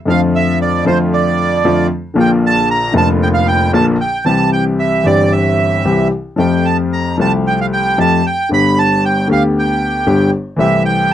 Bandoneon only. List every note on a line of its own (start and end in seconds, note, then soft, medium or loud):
0.10 0.21 F5 medium
0.35 0.59 E5 medium
0.62 0.85 D5 medium
0.87 0.98 C5 medium
1.13 1.87 D5 medium
2.20 2.31 G5 medium
2.46 2.69 A5 medium
2.71 2.94 A#5 medium
2.97 3.08 A5 medium
3.23 3.28 G5 medium
3.34 3.47 F5 medium
3.48 3.72 G5 medium
3.74 3.86 A5 medium
4.01 4.25 G5 medium
4.26 4.50 A5 medium
4.53 4.64 G5 medium
4.79 5.06 E5 medium
5.06 5.33 D5 medium
5.32 6.08 E5 medium
6.39 6.66 G5 medium
6.65 6.77 A5 medium
6.93 7.17 A#5 medium
7.21 7.32 A5 medium
7.47 7.59 G5 medium
7.61 7.66 F5 medium
7.73 7.99 G5 medium
8.00 8.26 A5 medium
8.27 8.50 G5 medium
8.53 8.79 B5 medium
8.79 9.04 A5 medium
9.05 9.28 G5 medium
9.32 9.43 F5 medium
9.59 10.31 G5 medium
10.60 10.83 E5 medium
10.85 11.11 G5 medium